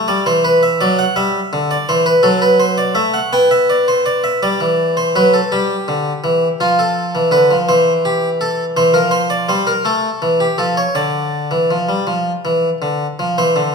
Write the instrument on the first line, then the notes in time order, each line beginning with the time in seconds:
harpsichord
0.08 G3 D5
0.26 E3 C5
0.44 B4
0.63 E5
0.81 F#3 D5
0.99 F#5
1.16 G3 E5
1.53 D3
1.71 D5
1.89 E3 C5
2.06 B4
2.23 F#3 A4
2.42 B4
2.60 C5
2.78 D5
2.95 A3 E5
3.14 F#5
3.33 B3 G5
3.51 E5
3.70 D5
3.88 C5
4.06 D5
4.24 E5
4.43 G3 D5
4.60 E3
4.97 C5
5.16 F#3 B4
5.34 A4
5.52 G3 G4
5.88 D3
6.24 E3
6.60 F3 F4
6.79 A4
7.15 E3
7.31 D3 B4
7.51 F3
7.69 E3 C5
8.05 G4
8.41 A4
8.77 E3 C5
8.94 F3 A#4
9.11 C5
9.30 D5
9.49 G3 C5
9.67 A#4
9.85 A3 A4
10.22 E3
10.40 G4
10.58 F3 A4
10.77 C#5
10.95 D3 D5
11.51 E3
11.71 F3
11.89 G3
12.07 F3
12.45 E3
12.82 D3
13.19 F3
13.38 E3 C5
13.56 D3